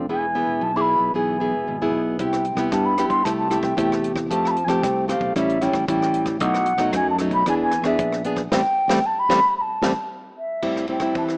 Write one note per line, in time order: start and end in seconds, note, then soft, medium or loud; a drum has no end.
0.09 0.43 E1 loud
0.09 0.59 E3 medium
0.09 0.25 B3 soft
0.09 0.25 E4 medium
0.09 0.25 G#4 medium
0.09 0.64 G#5 loud
0.35 0.71 B3 medium
0.35 0.71 E4 medium
0.35 0.71 G#4 medium
0.47 0.59 E1 medium
0.61 0.95 B1 loud
0.61 1.12 B2 medium
0.61 0.78 A5 loud
0.76 1.11 B3 medium
0.76 1.11 E4 medium
0.76 1.11 G#4 medium
0.76 0.82 D6 loud
0.81 1.15 B5 loud
0.99 1.11 B1 medium
1.14 1.53 B1 loud
1.14 1.65 E3 soft
1.14 1.37 B3 soft
1.14 1.37 E4 soft
1.14 1.37 G#4 medium
1.14 1.90 G#5 medium
1.40 1.76 B3 soft
1.40 1.76 E4 medium
1.40 1.76 G#4 medium
1.52 1.64 E1 medium
1.67 1.91 G#1 medium
1.67 2.18 B2 medium
1.82 2.16 B3 medium
1.82 2.16 E4 medium
1.82 2.17 G#4 medium
1.92 2.19 B1 medium
2.19 2.53 C2 loud
2.19 2.70 C3 medium
2.19 2.45 B3 soft
2.19 2.45 E4 medium
2.19 2.45 G4 medium
2.19 2.69 G5 medium
2.19 kick medium
2.19 closed hi-hat medium
2.33 cross-stick medium
2.33 closed hi-hat soft
2.45 closed hi-hat soft
2.55 2.68 C2 medium
2.55 2.94 B3 medium
2.55 2.94 E4 medium
2.55 2.95 G4 medium
2.55 kick medium
2.55 cross-stick medium
2.72 3.06 G2 loud
2.72 3.23 G3 medium
2.72 2.87 A5 loud
2.72 kick medium
2.72 cross-stick medium
2.72 closed hi-hat medium
2.85 3.08 B5 loud
2.98 3.23 B3 medium
2.98 3.23 E4 medium
2.98 3.23 G4 medium
2.98 cross-stick medium
2.98 closed hi-hat medium
3.08 3.21 G2 medium
3.08 3.26 C6 loud
3.08 kick medium
3.08 closed hi-hat soft
3.24 3.59 C2 loud
3.24 3.76 C3 medium
3.24 3.48 A3 medium
3.24 3.48 E4 medium
3.24 3.48 G4 medium
3.24 3.36 A5 medium
3.24 kick medium
3.24 cross-stick medium
3.24 closed hi-hat medium
3.37 3.61 A5 medium
3.50 3.73 A3 medium
3.50 3.73 E4 medium
3.50 3.74 G4 medium
3.50 cross-stick medium
3.50 closed hi-hat soft
3.61 3.74 C2 medium
3.61 4.00 G5 medium
3.61 kick medium
3.61 cross-stick medium
3.77 4.31 E2 medium
3.77 4.28 C3 medium
3.77 4.11 A3 medium
3.77 4.12 E4 medium
3.77 4.12 G4 medium
3.77 kick loud
3.77 closed hi-hat medium
3.92 cross-stick medium
4.04 closed hi-hat medium
4.16 kick medium
4.16 cross-stick medium
4.30 4.64 F2 loud
4.30 4.81 F3 medium
4.30 4.55 A3 medium
4.30 4.56 C4 soft
4.30 4.56 G4 medium
4.30 4.49 A5 loud
4.30 kick medium
4.30 closed hi-hat medium
4.45 4.52 B5 loud
4.45 cross-stick medium
4.51 4.66 A5 loud
4.56 closed hi-hat soft
4.65 4.79 F2 medium
4.65 5.05 A3 medium
4.65 4.69 G#5 loud
4.65 4.84 A5 loud
4.65 kick medium
4.69 5.05 C4 medium
4.69 5.05 G4 medium
4.69 cross-stick medium
4.69 closed hi-hat soft
4.83 5.17 C2 loud
4.83 5.33 C3 medium
4.83 5.08 G5 medium
4.83 kick loud
4.83 cross-stick medium
4.83 closed hi-hat medium
5.08 5.33 A3 medium
5.08 5.33 C4 medium
5.08 5.34 G4 medium
5.08 5.34 F5 medium
5.08 cross-stick medium
5.08 closed hi-hat medium
5.19 5.32 B1 medium
5.19 kick medium
5.35 5.70 A1 loud
5.35 5.86 A2 medium
5.35 5.58 G3 medium
5.35 5.58 C#4 medium
5.35 5.58 E4 medium
5.35 5.64 E5 medium
5.35 kick medium
5.35 cross-stick medium
5.35 closed hi-hat medium
5.49 closed hi-hat soft
5.61 5.84 G3 medium
5.61 5.84 C#4 medium
5.61 5.85 E4 medium
5.61 5.88 G5 medium
5.61 cross-stick medium
5.61 closed hi-hat soft
5.72 5.85 A1 medium
5.72 kick medium
5.72 cross-stick medium
5.88 6.41 A1 medium
5.88 6.38 E3 medium
5.88 6.37 G3 medium
5.88 6.37 C#4 medium
5.88 6.37 E4 medium
5.88 6.26 G5 loud
5.88 kick loud
5.88 closed hi-hat medium
6.02 cross-stick medium
6.14 closed hi-hat medium
6.26 kick medium
6.26 cross-stick medium
6.26 closed hi-hat soft
6.40 6.75 B1 loud
6.40 6.91 B2 medium
6.40 6.66 F#3 medium
6.40 6.66 A3 soft
6.40 6.66 D#4 medium
6.40 6.91 F#5 loud
6.40 kick medium
6.40 closed hi-hat medium
6.54 cross-stick medium
6.54 closed hi-hat soft
6.66 closed hi-hat soft
6.77 6.90 B1 medium
6.77 7.15 F#3 medium
6.77 7.15 A3 medium
6.77 7.16 D#4 medium
6.77 kick medium
6.77 cross-stick medium
6.93 7.27 F#2 loud
6.93 7.44 F#2 medium
6.93 7.07 G#5 loud
6.93 kick medium
6.93 cross-stick medium
6.93 closed hi-hat medium
7.10 7.16 A5 loud
7.18 7.42 F#3 medium
7.18 7.43 A3 medium
7.18 7.43 D#4 medium
7.18 cross-stick medium
7.18 closed hi-hat soft
7.29 7.42 B1 medium
7.29 kick medium
7.29 closed hi-hat soft
7.34 7.46 B5 loud
7.46 7.80 E2 loud
7.46 7.97 E3 medium
7.46 7.72 B3 medium
7.46 7.72 D4 medium
7.46 7.72 G#4 medium
7.46 7.55 G#5 loud
7.46 kick medium
7.46 cross-stick medium
7.46 closed hi-hat medium
7.63 7.86 G#5 loud
7.71 cross-stick medium
7.71 closed hi-hat soft
7.82 7.95 E2 medium
7.82 8.21 B3 medium
7.82 8.21 D4 medium
7.82 kick medium
7.82 cross-stick medium
7.86 8.21 G#4 medium
7.86 8.23 E5 medium
7.99 8.51 A#1 medium
7.99 kick loud
7.99 closed hi-hat medium
8.12 cross-stick medium
8.24 8.41 B3 medium
8.24 8.41 D4 medium
8.24 8.42 G#4 medium
8.24 closed hi-hat medium
8.36 kick medium
8.36 cross-stick medium
8.52 8.62 A1 loud
8.52 8.60 G3 loud
8.52 8.60 A3 medium
8.52 8.60 C4 medium
8.52 9.07 G5 loud
8.52 kick medium
8.52 snare medium
8.88 8.99 A1 loud
8.88 8.99 G3 medium
8.88 8.99 A3 loud
8.88 8.99 C4 loud
8.88 kick medium
8.88 snare medium
9.06 9.20 A5 loud
9.19 9.57 B5 loud
9.29 9.40 A1 medium
9.29 9.39 G3 loud
9.29 9.39 A3 loud
9.29 9.39 C4 loud
9.29 kick medium
9.29 snare medium
9.58 10.07 A5 medium
9.58 9.62 B5 medium
9.82 9.92 A1 medium
9.82 9.92 G3 medium
9.82 9.92 A3 medium
9.82 9.92 C4 medium
9.82 kick medium
9.82 snare medium
10.38 10.86 E5 medium
10.62 11.13 A2 medium
10.62 10.85 G3 soft
10.62 10.85 C4 soft
10.62 10.85 E4 medium
10.62 kick medium
10.62 crash medium
10.76 cross-stick medium
10.88 10.98 G3 soft
10.88 10.98 C4 medium
10.88 10.98 E4 soft
10.88 11.14 G5 medium
10.88 ride soft
11.00 11.37 G3 soft
11.00 11.37 C4 soft
11.00 11.37 E4 medium
11.00 kick medium
11.00 cross-stick medium
11.00 ride soft
11.15 11.37 E3 medium
11.15 11.23 A5 medium
11.15 kick medium
11.15 ride soft
11.29 cross-stick medium